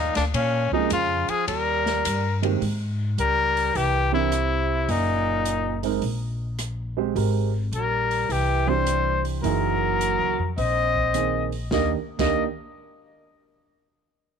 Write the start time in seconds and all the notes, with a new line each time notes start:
Already playing: D#2 A#2 D#4
0.15 D2 A#2 D4, snare, ride
0.34 A#2 C#4, kick, ride
0.72 C3 F3 G#3 A#3 C#4 D#4 G#4, muted upright bass stroke, kick
0.90 F2 C#3 F4, hi-hat pedal, ride
1.28 F3 G#4, muted upright bass stroke, ride
1.47 D#2 G3 A#4, kick, ride
1.86 snare
2.05 G2, kick, hi-hat pedal, ride
2.42 D#3 G#3 A#3 C4 G4, ride
2.61 G#2, kick, open hi-hat
3.18 C#2 G3 A#4, closed hi-hat
3.57 open hi-hat
3.75 C2 E3 G4, kick, open hi-hat
4.12 C3 E3 C4 D4 E4 A#4
4.32 cross-stick, closed hi-hat
4.88 F#1 A#2 D#4, kick, open hi-hat
5.45 closed hi-hat
5.83 G#3 C4 D#4 A#4, open hi-hat
6.02 A#1, kick, open hi-hat
6.59 cross-stick, closed hi-hat
6.97 G#3 C4 G4 C5
7.15 G#1 G#3 C4 G4 A#4, kick, open hi-hat
7.72 A#1 G3 A#4, closed hi-hat
8.11 open hi-hat
8.29 C2 E3 G4, kick, open hi-hat
8.67 E3 G3 C4 D4 G4 C5
8.87 cross-stick, closed hi-hat
9.25 open hi-hat
9.42 F#1 E3 F#3 A#3 D#4 G#4 A#4, kick, open hi-hat
10.01 closed hi-hat
10.19 C#2
10.39 F2
10.57 A#1 C4 D#5, kick, open hi-hat
10.95 kick
11.14 D#3 A#3 C4 G#4, cross-stick, closed hi-hat
11.52 open hi-hat
11.71 D#2 D#3 A#3 D4 G4 D#5, kick, snare
12.19 D#2 D#3 A#3 D4 G4 D#5, kick, snare, crash